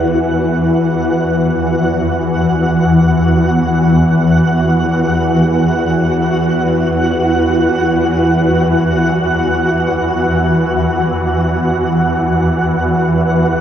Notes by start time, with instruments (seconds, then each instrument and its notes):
Already playing: synth drone E2 E3, synth texture F#4 F#5
13.55 synth texture F#4 F#5